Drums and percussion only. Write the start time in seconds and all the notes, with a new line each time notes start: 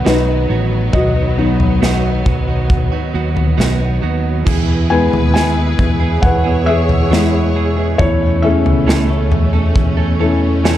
0.06 snare
0.93 kick, floor tom
1.60 floor tom
1.83 snare
2.26 kick, floor tom
2.70 kick, floor tom
3.37 floor tom
3.60 snare
4.47 kick, floor tom, crash
5.13 floor tom
5.36 snare
5.79 kick, floor tom
6.23 kick, floor tom
6.89 floor tom
7.13 snare
7.99 kick, floor tom
8.66 floor tom
8.89 snare
9.32 floor tom
9.76 kick, floor tom
10.65 snare